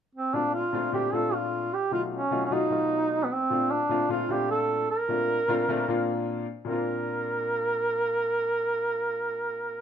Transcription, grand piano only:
0.33 0.61 A#2 medium
0.33 0.62 A3 medium
0.33 0.62 C4 medium
0.33 0.62 D4 medium
0.33 0.62 F4 medium
0.73 0.87 A#2 medium
0.73 0.87 A3 medium
0.73 0.88 C4 medium
0.73 0.88 D4 medium
0.73 0.88 F4 medium
0.92 1.07 A#2 medium
0.92 1.07 A3 medium
0.92 1.07 C4 medium
0.92 1.08 D4 medium
0.92 1.08 G4 medium
1.12 1.68 A#2 medium
1.12 1.68 A3 medium
1.12 1.69 C4 medium
1.12 1.69 D4 medium
1.12 1.69 F4 medium
1.91 2.19 B2 medium
1.91 2.20 F#3 medium
1.91 2.20 A3 medium
1.91 2.20 D#4 medium
1.91 2.20 F4 medium
2.30 2.45 B2 medium
2.30 2.45 F#3 medium
2.30 2.45 A3 medium
2.30 2.46 D#4 medium
2.30 2.46 F4 medium
2.50 2.65 B2 medium
2.50 2.65 F#3 medium
2.50 2.65 A3 medium
2.50 2.66 D#4 medium
2.50 2.66 F4 medium
2.70 3.26 B2 medium
2.70 3.26 F#3 medium
2.70 3.26 A3 medium
2.70 3.27 D#4 medium
2.70 3.27 F4 medium
3.50 3.78 A#2 medium
3.50 3.78 A3 medium
3.50 3.78 C4 medium
3.50 3.79 D4 medium
3.50 3.79 F4 medium
3.89 4.03 A#2 medium
3.89 4.04 A3 medium
3.89 4.04 C4 medium
3.89 4.04 D4 medium
3.89 4.04 F4 medium
4.09 4.23 A#2 medium
4.09 4.24 A3 medium
4.09 4.24 C4 medium
4.09 4.24 D4 medium
4.09 4.24 F4 medium
4.29 4.85 A#2 medium
4.29 4.85 A3 medium
4.29 4.85 C4 medium
4.29 4.86 D4 medium
4.29 4.86 F4 medium
5.08 5.37 A#2 medium
5.08 5.37 A3 medium
5.08 5.37 C4 medium
5.08 5.37 D4 medium
5.08 5.38 F4 medium
5.48 5.62 A#2 medium
5.48 5.63 A3 medium
5.48 5.63 C4 medium
5.48 5.63 D4 medium
5.48 5.63 F4 medium
5.68 5.82 A#2 medium
5.68 5.83 A3 medium
5.68 5.83 C4 medium
5.68 5.83 D4 medium
5.68 5.83 F4 medium
5.88 6.44 A#2 medium
5.88 6.44 A#3 medium
5.88 6.45 C4 medium
5.88 6.45 D4 medium
5.88 6.45 F4 medium
6.65 9.81 A#2 medium
6.65 9.81 A#3 medium
6.65 9.81 C4 medium
6.70 9.81 D4 medium
6.70 9.81 F4 medium

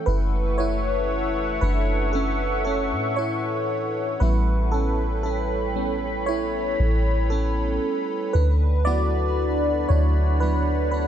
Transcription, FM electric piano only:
0.00 1.06 E3 medium
0.00 1.07 A3 medium
0.00 1.07 C#4 medium
0.00 2.13 A4 medium
0.06 0.56 E4 medium
0.06 0.60 B4 loud
0.58 1.59 E4 medium
0.58 1.65 C#5 loud
1.61 2.11 D4 medium
1.61 2.15 B4 medium
2.13 2.62 C#4 medium
2.13 2.61 A4 medium
2.65 3.14 C#4 medium
2.65 3.18 A4 medium
3.16 4.17 E4 medium
3.16 4.16 C#5 medium
4.20 4.90 G3 medium
4.20 4.90 B3 medium
4.20 4.73 C#4 medium
4.20 4.70 E4 medium
4.20 4.74 B4 loud
4.72 5.21 C#4 medium
4.72 5.20 A4 medium
5.23 5.75 C#4 medium
5.23 6.30 A4 medium
5.76 6.23 G3 medium
5.76 6.24 B3 soft
5.76 6.24 C#4 medium
6.26 7.27 E4 medium
6.26 7.26 C#5 loud
7.30 8.31 C#4 medium
7.30 8.37 A4 medium
8.33 8.83 D4 medium
8.33 8.82 B4 loud
8.85 9.55 F#3 medium
8.85 9.55 B3 medium
8.85 9.55 E4 medium
8.85 9.86 F#4 medium
8.85 9.92 D5 loud
9.89 10.38 E4 medium
9.89 10.42 C#5 medium
10.40 10.89 F#3 medium
10.40 10.89 B3 soft
10.40 10.90 D4 medium
10.40 10.89 E4 medium
10.40 10.90 B4 loud
10.91 11.07 D4 medium
10.91 11.07 B4 medium

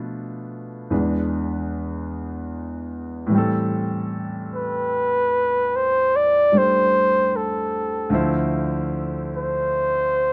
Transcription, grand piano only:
0.00 0.88 B2 medium
0.00 0.90 F3 medium
0.00 0.91 A3 medium
0.00 0.90 D4 medium
0.00 0.90 B4 medium
0.90 3.31 E2 soft
0.90 3.28 E3 soft
0.90 3.32 G#3 soft
0.90 3.32 D4 soft
0.90 3.32 B4 soft
3.26 8.09 A2 medium
3.26 8.11 E3 soft
3.32 6.51 G3 soft
3.32 8.14 C4 soft
3.38 8.15 A4 medium
6.52 8.12 G3 soft
6.52 8.12 A3 soft
6.52 8.13 D4 soft
6.52 8.13 C5 soft
8.09 10.33 D2 medium
8.09 10.33 D3 medium
8.09 10.33 F3 soft
8.09 10.33 E4 medium
8.14 10.33 C5 medium

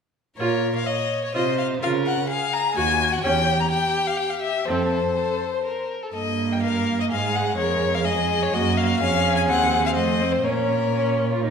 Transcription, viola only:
0.39 0.62 F4 soft
1.34 1.57 F4 soft
1.82 2.04 F4 soft
2.76 2.98 F#4 soft
3.24 3.46 C#4 soft
4.67 4.90 C4 soft
6.15 7.13 A#3 soft
7.12 8.07 G#3 soft
8.07 8.56 G#3 soft
8.55 9.02 A#3 soft
9.02 9.51 C#4 soft
9.49 9.96 C4 soft
9.96 10.22 A3 soft
10.20 10.44 C4 soft
10.44 10.88 C#4 soft
10.94 11.29 C#4 soft
11.32 11.43 F4 soft
11.44 11.50 D#4 soft

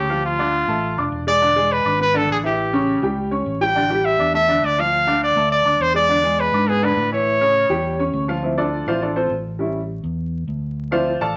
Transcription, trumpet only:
0.00 0.25 G4 medium
0.26 1.09 F4 loud
1.28 1.74 D5 loud
1.72 2.01 B4 loud
2.02 2.18 B4 loud
2.17 2.30 A4 medium
2.32 2.38 G#4 medium
2.46 3.16 G4 medium
3.62 4.07 G5 loud
4.05 4.34 E5 loud
4.35 4.66 E5 loud
4.65 4.81 D5 loud
4.80 5.23 F5 loud
5.23 5.50 D5 medium
5.52 5.83 D5 loud
5.82 5.95 C5 loud
5.96 6.42 D5 loud
6.40 6.71 B4 medium
6.69 6.86 G#4 loud
6.84 7.12 B4 loud
7.13 8.11 C#5 medium

